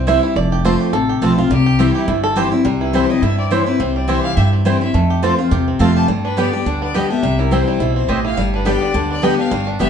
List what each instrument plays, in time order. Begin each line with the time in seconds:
Already playing: upright bass C2, five-string banjo G3 C4
0.07 steel-string acoustic guitar G3 C4 E4, mandolin C4 E4 C5 G5, five-string banjo E5
0.23 five-string banjo E4
0.36 upright bass F1, steel-string acoustic guitar F2, five-string banjo D5
0.52 five-string banjo G4
0.65 steel-string acoustic guitar F3 A3 C4 F4, mandolin C4 F4 C5 A5, five-string banjo C5
0.81 five-string banjo G4
0.93 upright bass A1, steel-string acoustic guitar C3, five-string banjo A4
1.09 five-string banjo G4
1.22 upright bass B1, steel-string acoustic guitar F3 A3 C4 F4, mandolin C4 F4 C5 A5, five-string banjo C4
1.37 steel-string acoustic guitar C4 F4, five-string banjo F4
1.50 upright bass C2, steel-string acoustic guitar C3, five-string banjo G3, fiddle G4
1.66 five-string banjo G4
1.79 steel-string acoustic guitar E3 G3 C4 E4, five-string banjo C4, mandolin C4 E4 C5 G5
1.95 fiddle E4, five-string banjo G4
2.08 upright bass G1, steel-string acoustic guitar G2, five-string banjo E4
2.24 five-string banjo A4
2.36 steel-string acoustic guitar E3 G3 C4 E4, mandolin C4 E4 C5 G5, five-string banjo G4
2.52 five-string banjo G3, steel-string acoustic guitar C4 E4
2.65 upright bass C2, steel-string acoustic guitar C3, five-string banjo G3
2.81 five-string banjo E4, fiddle B4
2.93 steel-string acoustic guitar E3 G3 C4 E4, five-string banjo C4, mandolin C4 E4 C5 G5, fiddle C5
3.10 five-string banjo G3, steel-string acoustic guitar C4 E4, fiddle D#5
3.22 upright bass G2, steel-string acoustic guitar G2, five-string banjo E4, fiddle E5
3.38 five-string banjo C4, fiddle D5
3.50 steel-string acoustic guitar E3 G3 C4 E4, mandolin C4 E4 C5 G5, five-string banjo G4, fiddle C#5
3.66 steel-string acoustic guitar C4 E4, five-string banjo E4, fiddle B4
3.80 upright bass C2, steel-string acoustic guitar C3, five-string banjo C4, fiddle C5
3.96 five-string banjo G3, fiddle D5
4.08 steel-string acoustic guitar E3 G3 C4 E4, mandolin C4 E4 C5 G5, five-string banjo G4, fiddle E5
4.23 five-string banjo E4, fiddle F5
4.36 steel-string acoustic guitar G2, upright bass G2, five-string banjo G4, fiddle E5
4.53 five-string banjo C4
4.65 steel-string acoustic guitar E3 G3 C4 E4, five-string banjo G3, mandolin C4 E4 C5 G5, fiddle C5
4.81 five-string banjo C4, steel-string acoustic guitar C4 E4, fiddle E5
4.94 steel-string acoustic guitar F2, upright bass F2, five-string banjo A3
5.10 five-string banjo G4
5.23 steel-string acoustic guitar F3 A3 C4 F4, mandolin C4 F4 C5 A5, five-string banjo C4
5.38 steel-string acoustic guitar C4 F4, five-string banjo F4
5.51 upright bass E2, steel-string acoustic guitar C3, five-string banjo G4
5.68 five-string banjo C4
5.79 upright bass F2, steel-string acoustic guitar F3 A3 C4 F4, mandolin C4 F4 C5 A5, five-string banjo F4, fiddle F5
5.96 five-string banjo G4, fiddle A5
6.08 steel-string acoustic guitar G2, upright bass G2, five-string banjo G3
6.25 five-string banjo D4, fiddle B4
6.37 steel-string acoustic guitar D3 G3 B3 G4, mandolin B3 G4 D5 G5, five-string banjo B3, fiddle D5
6.53 five-string banjo G3, steel-string acoustic guitar B3 G4
6.66 upright bass D2, steel-string acoustic guitar D3, five-string banjo D4
6.82 five-string banjo B3, fiddle D5
6.94 steel-string acoustic guitar D3 G3 B3 G4, mandolin B3 G4 D5 G5, five-string banjo G4, fiddle D#5
7.10 steel-string acoustic guitar B3 G4, five-string banjo D4, fiddle E5
7.23 upright bass C2, steel-string acoustic guitar C3, five-string banjo G3
7.39 five-string banjo E4, fiddle A#4
7.51 steel-string acoustic guitar E3 G3 C4 E4, five-string banjo C4, mandolin C4 E4 C5 G5, fiddle C5
7.68 five-string banjo G3
7.80 upright bass B1, steel-string acoustic guitar B2, five-string banjo E4
7.95 five-string banjo C4, fiddle C5
8.08 upright bass A1, steel-string acoustic guitar A2, mandolin C4 E4 C5 G5, five-string banjo G4, fiddle D#5
8.25 five-string banjo E4, fiddle F5
8.37 upright bass G1, steel-string acoustic guitar G2, five-string banjo G3
8.54 five-string banjo D4, fiddle B4
8.65 steel-string acoustic guitar D3 G3 B3 G4, mandolin B3 G4 D5 G5, five-string banjo B3, fiddle D5
8.82 five-string banjo G3
8.94 upright bass D2, steel-string acoustic guitar D3, five-string banjo D4
9.11 five-string banjo B3, fiddle D5
9.22 steel-string acoustic guitar D3 G3 B3 G4, mandolin B3 G4 D5 G5, five-string banjo G4, fiddle D#5
9.38 steel-string acoustic guitar B3 G4, five-string banjo D4, fiddle F5
9.51 upright bass G1, steel-string acoustic guitar G2, five-string banjo G3
9.67 five-string banjo D4
9.79 upright bass G1, steel-string acoustic guitar D3 G3 B3 G4, five-string banjo G3, mandolin B3 G4 D5 G5, fiddle E5